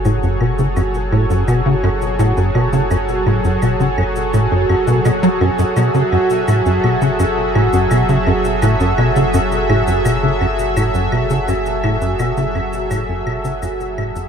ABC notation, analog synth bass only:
X:1
M:4/4
L:1/16
Q:1/4=84
K:F#m
V:1 name="Analog synth bass" clef=bass
A,, F,, B,, C, F,, z A,, F,, B,, C, F,, z A,, F,, B,, C, | F,, z A,, F,, B,, C, F,, z A,, F,, F,, B,, B,, F, F,, F,, | B,, C, F,, z A,, F,, B,, C, F,, z A,, F,, B,, C, F,, z | A,, F,, B,, C, F,, z A,, F,, B,, C, F,, z A,, F,, B,, C, |
F,, z A,, F,, B,, C, F,, z A,, F,, B,, C, F,, z A,, F,, |]